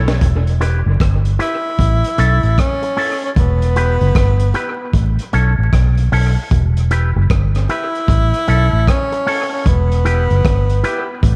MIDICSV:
0, 0, Header, 1, 7, 480
1, 0, Start_track
1, 0, Tempo, 787402
1, 131, Time_signature, 4, 2, 24, 8
1, 6923, End_track
2, 0, Start_track
2, 0, Title_t, "Clean electric guitar"
2, 0, Program_c, 0, 27
2, 369, Note_on_c, 0, 64, 74
2, 376, Note_on_c, 0, 67, 92
2, 380, Note_on_c, 0, 71, 93
2, 484, Note_off_c, 0, 64, 0
2, 487, Note_off_c, 0, 67, 0
2, 489, Note_off_c, 0, 71, 0
2, 848, Note_on_c, 0, 64, 86
2, 854, Note_on_c, 0, 67, 77
2, 859, Note_on_c, 0, 71, 96
2, 964, Note_off_c, 0, 64, 0
2, 967, Note_off_c, 0, 67, 0
2, 969, Note_off_c, 0, 71, 0
2, 1330, Note_on_c, 0, 61, 81
2, 1335, Note_on_c, 0, 64, 86
2, 1340, Note_on_c, 0, 69, 92
2, 1445, Note_off_c, 0, 61, 0
2, 1447, Note_off_c, 0, 64, 0
2, 1449, Note_off_c, 0, 69, 0
2, 1809, Note_on_c, 0, 61, 73
2, 1815, Note_on_c, 0, 64, 84
2, 1820, Note_on_c, 0, 69, 77
2, 1924, Note_off_c, 0, 61, 0
2, 1927, Note_off_c, 0, 64, 0
2, 1930, Note_off_c, 0, 69, 0
2, 2293, Note_on_c, 0, 64, 80
2, 2298, Note_on_c, 0, 67, 77
2, 2304, Note_on_c, 0, 71, 89
2, 2406, Note_off_c, 0, 64, 0
2, 2409, Note_off_c, 0, 67, 0
2, 2411, Note_off_c, 0, 71, 0
2, 2769, Note_on_c, 0, 64, 74
2, 2775, Note_on_c, 0, 67, 83
2, 2780, Note_on_c, 0, 71, 98
2, 2884, Note_off_c, 0, 64, 0
2, 2887, Note_off_c, 0, 67, 0
2, 2889, Note_off_c, 0, 71, 0
2, 3249, Note_on_c, 0, 61, 74
2, 3256, Note_on_c, 0, 64, 79
2, 3260, Note_on_c, 0, 69, 81
2, 3364, Note_off_c, 0, 61, 0
2, 3367, Note_off_c, 0, 64, 0
2, 3369, Note_off_c, 0, 69, 0
2, 3731, Note_on_c, 0, 61, 80
2, 3737, Note_on_c, 0, 64, 81
2, 3742, Note_on_c, 0, 69, 82
2, 3845, Note_off_c, 0, 61, 0
2, 3847, Note_off_c, 0, 64, 0
2, 3850, Note_off_c, 0, 69, 0
2, 4211, Note_on_c, 0, 64, 81
2, 4218, Note_on_c, 0, 67, 77
2, 4223, Note_on_c, 0, 71, 89
2, 4324, Note_off_c, 0, 64, 0
2, 4328, Note_off_c, 0, 67, 0
2, 4330, Note_off_c, 0, 71, 0
2, 4690, Note_on_c, 0, 64, 85
2, 4697, Note_on_c, 0, 67, 85
2, 4701, Note_on_c, 0, 71, 93
2, 4803, Note_off_c, 0, 64, 0
2, 4807, Note_off_c, 0, 67, 0
2, 4809, Note_off_c, 0, 71, 0
2, 5168, Note_on_c, 0, 61, 89
2, 5175, Note_on_c, 0, 64, 82
2, 5179, Note_on_c, 0, 69, 90
2, 5282, Note_off_c, 0, 61, 0
2, 5285, Note_off_c, 0, 64, 0
2, 5287, Note_off_c, 0, 69, 0
2, 5648, Note_on_c, 0, 61, 85
2, 5654, Note_on_c, 0, 64, 85
2, 5660, Note_on_c, 0, 69, 98
2, 5762, Note_off_c, 0, 61, 0
2, 5765, Note_off_c, 0, 64, 0
2, 5767, Note_off_c, 0, 69, 0
2, 6127, Note_on_c, 0, 64, 89
2, 6133, Note_on_c, 0, 67, 92
2, 6136, Note_on_c, 0, 71, 98
2, 6240, Note_off_c, 0, 64, 0
2, 6244, Note_off_c, 0, 67, 0
2, 6245, Note_off_c, 0, 71, 0
2, 6605, Note_on_c, 0, 64, 84
2, 6611, Note_on_c, 0, 67, 93
2, 6615, Note_on_c, 0, 71, 107
2, 6719, Note_off_c, 0, 64, 0
2, 6722, Note_off_c, 0, 67, 0
2, 6724, Note_off_c, 0, 71, 0
2, 6923, End_track
3, 0, Start_track
3, 0, Title_t, "Horn section"
3, 0, Program_c, 1, 61
3, 6608, Note_on_c, 1, 59, 81
3, 6608, Note_on_c, 1, 64, 73
3, 6608, Note_on_c, 1, 67, 90
3, 6737, Note_off_c, 1, 59, 0
3, 6737, Note_off_c, 1, 64, 0
3, 6737, Note_off_c, 1, 67, 0
3, 6923, End_track
4, 0, Start_track
4, 0, Title_t, "Tenor saxophone"
4, 0, Program_c, 2, 66
4, 863, Note_on_c, 2, 64, 103
4, 1586, Note_on_c, 2, 61, 96
4, 1595, Note_off_c, 2, 64, 0
4, 1971, Note_off_c, 2, 61, 0
4, 1978, Note_on_c, 2, 61, 78
4, 2014, Note_off_c, 2, 61, 0
4, 2065, Note_on_c, 2, 59, 91
4, 2994, Note_off_c, 2, 59, 0
4, 4697, Note_on_c, 2, 64, 115
4, 5416, Note_on_c, 2, 61, 96
4, 5425, Note_off_c, 2, 64, 0
4, 5804, Note_off_c, 2, 61, 0
4, 5809, Note_on_c, 2, 61, 76
4, 5886, Note_off_c, 2, 61, 0
4, 5900, Note_on_c, 2, 59, 91
4, 6828, Note_off_c, 2, 59, 0
4, 6923, End_track
5, 0, Start_track
5, 0, Title_t, "Fingered electric bass"
5, 0, Program_c, 3, 33
5, 0, Note_on_c, 3, 35, 95
5, 110, Note_off_c, 3, 35, 0
5, 131, Note_on_c, 3, 28, 100
5, 499, Note_off_c, 3, 28, 0
5, 525, Note_on_c, 3, 30, 95
5, 604, Note_off_c, 3, 30, 0
5, 612, Note_on_c, 3, 31, 90
5, 831, Note_off_c, 3, 31, 0
5, 1092, Note_on_c, 3, 33, 84
5, 1231, Note_off_c, 3, 33, 0
5, 1332, Note_on_c, 3, 35, 91
5, 1471, Note_off_c, 3, 35, 0
5, 1484, Note_on_c, 3, 33, 93
5, 1564, Note_off_c, 3, 33, 0
5, 2052, Note_on_c, 3, 28, 101
5, 2420, Note_off_c, 3, 28, 0
5, 2445, Note_on_c, 3, 30, 85
5, 2525, Note_off_c, 3, 30, 0
5, 2532, Note_on_c, 3, 31, 82
5, 2750, Note_off_c, 3, 31, 0
5, 3009, Note_on_c, 3, 33, 91
5, 3149, Note_off_c, 3, 33, 0
5, 3253, Note_on_c, 3, 35, 88
5, 3391, Note_off_c, 3, 35, 0
5, 3404, Note_on_c, 3, 33, 97
5, 3484, Note_off_c, 3, 33, 0
5, 3492, Note_on_c, 3, 35, 92
5, 3710, Note_off_c, 3, 35, 0
5, 3733, Note_on_c, 3, 35, 97
5, 3871, Note_off_c, 3, 35, 0
5, 3971, Note_on_c, 3, 28, 105
5, 4338, Note_off_c, 3, 28, 0
5, 4365, Note_on_c, 3, 30, 102
5, 4444, Note_off_c, 3, 30, 0
5, 4450, Note_on_c, 3, 31, 82
5, 4668, Note_off_c, 3, 31, 0
5, 4929, Note_on_c, 3, 33, 90
5, 5068, Note_off_c, 3, 33, 0
5, 5172, Note_on_c, 3, 35, 84
5, 5309, Note_off_c, 3, 35, 0
5, 5322, Note_on_c, 3, 33, 97
5, 5401, Note_off_c, 3, 33, 0
5, 5890, Note_on_c, 3, 28, 107
5, 6256, Note_off_c, 3, 28, 0
5, 6282, Note_on_c, 3, 30, 89
5, 6361, Note_off_c, 3, 30, 0
5, 6370, Note_on_c, 3, 31, 82
5, 6587, Note_off_c, 3, 31, 0
5, 6846, Note_on_c, 3, 33, 91
5, 6923, Note_off_c, 3, 33, 0
5, 6923, End_track
6, 0, Start_track
6, 0, Title_t, "Muted clean electric guitar strokes"
6, 1722, Note_on_c, 9, 29, 44
6, 1783, Note_off_c, 9, 29, 0
6, 3886, Note_on_c, 9, 29, 45
6, 3947, Note_off_c, 9, 29, 0
6, 5561, Note_on_c, 9, 29, 43
6, 5622, Note_off_c, 9, 29, 0
6, 6923, End_track
7, 0, Start_track
7, 0, Title_t, "Drums"
7, 48, Note_on_c, 9, 38, 93
7, 109, Note_off_c, 9, 38, 0
7, 130, Note_on_c, 9, 36, 114
7, 130, Note_on_c, 9, 42, 96
7, 191, Note_off_c, 9, 36, 0
7, 191, Note_off_c, 9, 42, 0
7, 287, Note_on_c, 9, 42, 46
7, 348, Note_off_c, 9, 42, 0
7, 375, Note_on_c, 9, 42, 67
7, 436, Note_off_c, 9, 42, 0
7, 611, Note_on_c, 9, 36, 118
7, 612, Note_on_c, 9, 42, 76
7, 618, Note_on_c, 9, 37, 114
7, 672, Note_off_c, 9, 36, 0
7, 673, Note_off_c, 9, 42, 0
7, 679, Note_off_c, 9, 37, 0
7, 763, Note_on_c, 9, 42, 48
7, 824, Note_off_c, 9, 42, 0
7, 852, Note_on_c, 9, 42, 62
7, 913, Note_off_c, 9, 42, 0
7, 1089, Note_on_c, 9, 36, 97
7, 1096, Note_on_c, 9, 42, 82
7, 1150, Note_off_c, 9, 36, 0
7, 1157, Note_off_c, 9, 42, 0
7, 1245, Note_on_c, 9, 42, 54
7, 1306, Note_off_c, 9, 42, 0
7, 1330, Note_on_c, 9, 42, 81
7, 1391, Note_off_c, 9, 42, 0
7, 1481, Note_on_c, 9, 42, 32
7, 1542, Note_off_c, 9, 42, 0
7, 1572, Note_on_c, 9, 36, 101
7, 1574, Note_on_c, 9, 42, 89
7, 1577, Note_on_c, 9, 37, 104
7, 1633, Note_off_c, 9, 36, 0
7, 1635, Note_off_c, 9, 42, 0
7, 1638, Note_off_c, 9, 37, 0
7, 1724, Note_on_c, 9, 42, 48
7, 1784, Note_off_c, 9, 42, 0
7, 1814, Note_on_c, 9, 46, 80
7, 1875, Note_off_c, 9, 46, 0
7, 1966, Note_on_c, 9, 42, 35
7, 2026, Note_off_c, 9, 42, 0
7, 2050, Note_on_c, 9, 36, 107
7, 2050, Note_on_c, 9, 42, 87
7, 2110, Note_off_c, 9, 42, 0
7, 2111, Note_off_c, 9, 36, 0
7, 2207, Note_on_c, 9, 42, 47
7, 2268, Note_off_c, 9, 42, 0
7, 2293, Note_on_c, 9, 42, 66
7, 2353, Note_off_c, 9, 42, 0
7, 2443, Note_on_c, 9, 42, 31
7, 2504, Note_off_c, 9, 42, 0
7, 2530, Note_on_c, 9, 42, 85
7, 2531, Note_on_c, 9, 36, 116
7, 2536, Note_on_c, 9, 37, 113
7, 2591, Note_off_c, 9, 36, 0
7, 2591, Note_off_c, 9, 42, 0
7, 2597, Note_off_c, 9, 37, 0
7, 2680, Note_on_c, 9, 42, 51
7, 2741, Note_off_c, 9, 42, 0
7, 2769, Note_on_c, 9, 42, 57
7, 2830, Note_off_c, 9, 42, 0
7, 3008, Note_on_c, 9, 36, 103
7, 3011, Note_on_c, 9, 42, 79
7, 3069, Note_off_c, 9, 36, 0
7, 3072, Note_off_c, 9, 42, 0
7, 3162, Note_on_c, 9, 42, 54
7, 3223, Note_off_c, 9, 42, 0
7, 3249, Note_on_c, 9, 42, 70
7, 3310, Note_off_c, 9, 42, 0
7, 3491, Note_on_c, 9, 36, 99
7, 3492, Note_on_c, 9, 42, 90
7, 3495, Note_on_c, 9, 37, 92
7, 3552, Note_off_c, 9, 36, 0
7, 3553, Note_off_c, 9, 42, 0
7, 3556, Note_off_c, 9, 37, 0
7, 3642, Note_on_c, 9, 42, 50
7, 3703, Note_off_c, 9, 42, 0
7, 3734, Note_on_c, 9, 46, 78
7, 3795, Note_off_c, 9, 46, 0
7, 3970, Note_on_c, 9, 36, 104
7, 3970, Note_on_c, 9, 42, 90
7, 4031, Note_off_c, 9, 36, 0
7, 4031, Note_off_c, 9, 42, 0
7, 4126, Note_on_c, 9, 42, 47
7, 4187, Note_off_c, 9, 42, 0
7, 4211, Note_on_c, 9, 42, 64
7, 4272, Note_off_c, 9, 42, 0
7, 4449, Note_on_c, 9, 42, 78
7, 4450, Note_on_c, 9, 36, 116
7, 4455, Note_on_c, 9, 37, 115
7, 4510, Note_off_c, 9, 42, 0
7, 4511, Note_off_c, 9, 36, 0
7, 4516, Note_off_c, 9, 37, 0
7, 4602, Note_on_c, 9, 42, 49
7, 4608, Note_on_c, 9, 37, 65
7, 4663, Note_off_c, 9, 42, 0
7, 4669, Note_off_c, 9, 37, 0
7, 4690, Note_on_c, 9, 42, 60
7, 4751, Note_off_c, 9, 42, 0
7, 4846, Note_on_c, 9, 42, 35
7, 4907, Note_off_c, 9, 42, 0
7, 4927, Note_on_c, 9, 36, 111
7, 4933, Note_on_c, 9, 42, 80
7, 4988, Note_off_c, 9, 36, 0
7, 4994, Note_off_c, 9, 42, 0
7, 5082, Note_on_c, 9, 42, 54
7, 5143, Note_off_c, 9, 42, 0
7, 5169, Note_on_c, 9, 42, 75
7, 5230, Note_off_c, 9, 42, 0
7, 5410, Note_on_c, 9, 36, 99
7, 5413, Note_on_c, 9, 42, 87
7, 5415, Note_on_c, 9, 37, 103
7, 5471, Note_off_c, 9, 36, 0
7, 5474, Note_off_c, 9, 42, 0
7, 5476, Note_off_c, 9, 37, 0
7, 5561, Note_on_c, 9, 42, 50
7, 5622, Note_off_c, 9, 42, 0
7, 5654, Note_on_c, 9, 46, 79
7, 5715, Note_off_c, 9, 46, 0
7, 5888, Note_on_c, 9, 36, 111
7, 5888, Note_on_c, 9, 42, 92
7, 5949, Note_off_c, 9, 36, 0
7, 5949, Note_off_c, 9, 42, 0
7, 6045, Note_on_c, 9, 42, 50
7, 6106, Note_off_c, 9, 42, 0
7, 6131, Note_on_c, 9, 42, 69
7, 6192, Note_off_c, 9, 42, 0
7, 6281, Note_on_c, 9, 42, 29
7, 6342, Note_off_c, 9, 42, 0
7, 6368, Note_on_c, 9, 36, 118
7, 6368, Note_on_c, 9, 42, 83
7, 6374, Note_on_c, 9, 37, 119
7, 6429, Note_off_c, 9, 36, 0
7, 6429, Note_off_c, 9, 42, 0
7, 6435, Note_off_c, 9, 37, 0
7, 6520, Note_on_c, 9, 42, 52
7, 6581, Note_off_c, 9, 42, 0
7, 6607, Note_on_c, 9, 42, 68
7, 6668, Note_off_c, 9, 42, 0
7, 6845, Note_on_c, 9, 36, 112
7, 6849, Note_on_c, 9, 42, 79
7, 6906, Note_off_c, 9, 36, 0
7, 6910, Note_off_c, 9, 42, 0
7, 6923, End_track
0, 0, End_of_file